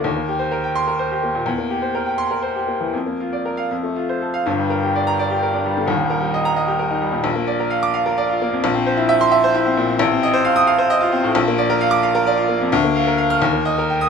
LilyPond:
\new Staff \with { instrumentName = "Grand piano" } { \time 6/8 \key bes \major \tempo 4. = 86 << { r4. c'''8 r4 | r4. c'''8 r4 | r4 r16 f''16 r4 r16 f''16 | r4 r16 bes''8 r4 r16 |
r4 r16 bes''8 r4 r16 | r4 r16 d'''8 r4 r16 | r4 r16 c'''8 r4 r16 | r4 r16 ees'''8 r4 r16 |
r4 r16 d'''8 r4 r16 | r4 r16 f'''16 r4 r16 ees'''16 | } \\ { ees,16 bes16 g'16 c''16 bes'16 g''8 bes'16 c''16 g'16 bes16 bes,16 | e,16 bes16 g'16 c''16 bes'16 g''8 bes'16 c''16 g'16 bes16 e16 | f,16 bes16 f'16 d''16 bes'8 f,16 a16 f'16 c''16 a'8 | <g,, g,>16 g16 bes'16 g'16 d''8 d''16 g'16 bes'16 d'16 g16 d16 |
<ees,, ees,>16 g16 bes'16 g'16 ees''8 ees''16 g'16 bes'16 ees'16 g16 bes,16 | bes,,16 bes16 d''16 bes'16 f''8 f''16 bes'16 d''16 f'16 bes16 f,16 | bes,,16 c'16 c''16 e'16 e''8 e''16 c''16 e'16 c'16 bes,16 c'16 | a,,16 c'16 ees''16 c''16 f''8 f''16 c''16 ees''16 f'16 c'16 a,16 |
bes,,16 bes16 d''16 bes'16 f''8 f''16 bes'16 d''16 f'16 bes16 f,16 | d,16 bes16 f''16 bes'16 f''8 ees,16 bes16 ees''16 bes'16 g''8 | } >> }